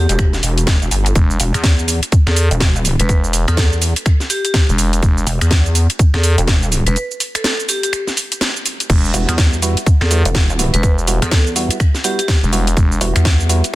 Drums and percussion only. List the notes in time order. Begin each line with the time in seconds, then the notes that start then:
0.09 closed hi-hat, cabasa
0.19 finger snap, kick, closed hi-hat, cabasa
0.33 snare, cabasa
0.43 open hi-hat, cabasa
0.58 closed hi-hat, cabasa
0.67 kick, snare, closed hi-hat, cabasa
0.82 cabasa
0.91 open hi-hat, cabasa
1.06 closed hi-hat, cabasa
1.15 kick, closed hi-hat, cabasa
1.31 cabasa
1.40 open hi-hat, cabasa
1.54 finger snap, closed hi-hat, cabasa
1.64 kick, snare, closed hi-hat, cabasa
1.79 cabasa
1.88 open hi-hat, cabasa
2.03 closed hi-hat, cabasa
2.12 kick, closed hi-hat, cabasa
2.27 finger snap, snare
2.36 open hi-hat, cabasa
2.51 closed hi-hat, cabasa
2.60 kick, snare, closed hi-hat, cabasa
2.76 cabasa
2.85 open hi-hat, cabasa
3.00 closed hi-hat, cabasa
3.09 kick, closed hi-hat, cabasa
3.24 cabasa
3.33 open hi-hat, cabasa
3.48 finger snap, closed hi-hat, cabasa
3.57 kick, snare, closed hi-hat, cabasa
3.73 cabasa
3.82 open hi-hat, cabasa
3.96 closed hi-hat, cabasa
4.06 finger snap, kick, closed hi-hat, cabasa
4.20 snare, cabasa
4.30 open hi-hat, cabasa
4.45 closed hi-hat, cabasa
4.54 kick, snare, closed hi-hat, cabasa
4.69 cabasa
4.78 open hi-hat, cabasa
4.93 closed hi-hat, cabasa
5.03 kick, closed hi-hat, cabasa
5.18 cabasa
5.27 open hi-hat, cabasa
5.41 finger snap, closed hi-hat, cabasa
5.51 kick, snare, closed hi-hat, cabasa
5.66 cabasa
5.75 open hi-hat, cabasa
5.90 closed hi-hat, cabasa
5.99 kick, closed hi-hat, cabasa
6.14 finger snap, snare
6.23 open hi-hat, cabasa
6.38 closed hi-hat, cabasa
6.47 kick, snare, closed hi-hat, cabasa
6.63 cabasa
6.72 open hi-hat, cabasa
6.87 closed hi-hat, cabasa
6.96 closed hi-hat, cabasa
7.11 cabasa
7.20 open hi-hat, cabasa
7.35 finger snap, closed hi-hat, cabasa
7.44 snare, closed hi-hat, cabasa
7.60 cabasa
7.69 open hi-hat, cabasa
7.83 closed hi-hat, cabasa
7.93 finger snap, closed hi-hat, cabasa
8.07 snare, cabasa
8.17 open hi-hat, cabasa
8.32 closed hi-hat, cabasa
8.41 snare, closed hi-hat, cabasa
8.56 cabasa
8.66 open hi-hat, cabasa
8.80 closed hi-hat, cabasa
8.90 kick, closed hi-hat, crash, cabasa
9.05 cabasa
9.14 open hi-hat, cabasa
9.29 finger snap, closed hi-hat, cabasa
9.38 kick, snare, closed hi-hat, cabasa
9.53 cabasa
9.62 open hi-hat, cabasa
9.77 closed hi-hat, cabasa
9.86 kick, closed hi-hat, cabasa
10.01 finger snap, snare
10.11 open hi-hat, cabasa
10.25 closed hi-hat, cabasa
10.35 kick, snare, closed hi-hat, cabasa
10.50 cabasa
10.59 open hi-hat, cabasa
10.74 closed hi-hat, cabasa
10.83 kick, closed hi-hat, cabasa
10.98 cabasa
11.07 open hi-hat, cabasa
11.22 finger snap, closed hi-hat, cabasa
11.31 kick, snare, closed hi-hat, cabasa
11.47 cabasa
11.56 open hi-hat, cabasa
11.71 closed hi-hat, cabasa
11.80 finger snap, kick, closed hi-hat, cabasa
11.94 snare, cabasa
12.04 open hi-hat, cabasa
12.19 closed hi-hat, cabasa
12.28 kick, snare, closed hi-hat, cabasa
12.44 cabasa
12.53 open hi-hat, cabasa
12.67 closed hi-hat, cabasa
12.77 kick, closed hi-hat, cabasa
12.92 cabasa
13.01 open hi-hat, cabasa
13.16 finger snap, closed hi-hat, cabasa
13.25 kick, snare, closed hi-hat, cabasa
13.40 cabasa
13.49 open hi-hat, cabasa
13.64 closed hi-hat, cabasa